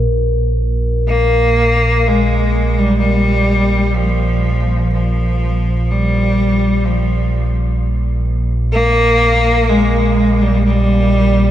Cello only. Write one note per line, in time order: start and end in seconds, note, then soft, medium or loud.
1.07 2.10 A#3 loud
2.08 2.80 G#3 medium
2.79 2.98 G3 medium
2.98 3.98 G3 medium
3.96 4.93 F3 medium
4.93 5.93 F3 medium
5.91 6.86 G3 medium
6.85 7.56 F3 medium
8.72 9.71 A#3 loud
9.69 10.43 G#3 medium
10.42 10.64 G3 medium
10.65 11.51 G3 medium